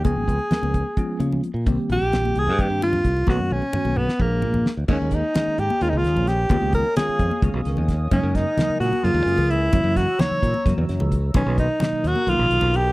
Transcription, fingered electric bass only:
0.05 C#2
0.16 G#1
0.28 C#2
0.51 muted fingered electric bass stroke
0.63 C#2
1.20 C#3
1.54 A#2
1.67 C2
1.89 A#1
2.02 A#1
2.36 C2
2.47 G2
2.70 G2
3.05 C2
3.27 B1
3.39 F#2
3.51 B1
3.73 muted fingered electric bass stroke
3.85 B1
4.20 A#1
4.43 A#2
4.77 D2
4.88 D#2
5.02 D#2
5.48 muted fingered electric bass stroke
5.58 G#2
5.81 D#2
5.93 C#2
6.04 D#2
6.16 A#1
6.50 C#2
6.62 C#2
7.09 muted fingered electric bass stroke
7.19 F2
7.42 C#2
7.54 B1
7.66 C#2
7.78 D#2
8.11 F#2
8.23 F#2
8.69 muted fingered electric bass stroke
8.80 A#2
9.04 F#2
9.14 D#2
9.26 F#2
9.37 C#2
9.73 F#2
9.84 F#2
10.31 muted fingered electric bass stroke
10.43 A#2
10.66 F#2
10.78 E2
10.89 F#2
11.01 C#2
11.35 B1
11.46 B1
11.93 muted fingered electric bass stroke
12.04 D#2
12.27 B1
12.39 A#1
12.50 B1
12.62 B1

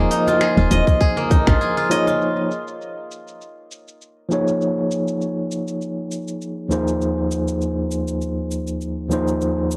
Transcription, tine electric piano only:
Already playing: F3 A#3 D#4 G#4 C5
1.90 F3 A#3 D#4 G#4 C#5
4.29 F3 A#3 D#4 G#4
4.33 C#5
6.69 D#2 F3 A#3 D#4 G#4 C5
9.09 D#2 F3 A#3 D#4 G#4
9.13 C5

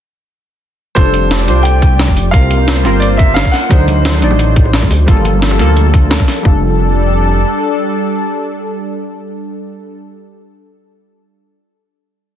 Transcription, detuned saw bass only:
0.96 F1
1.48 C2
2.08 F1
2.34 C2
2.85 G1
3.71 D2
4.22 A1
4.82 D2
5.08 G1
5.59 D2
6.45 F1

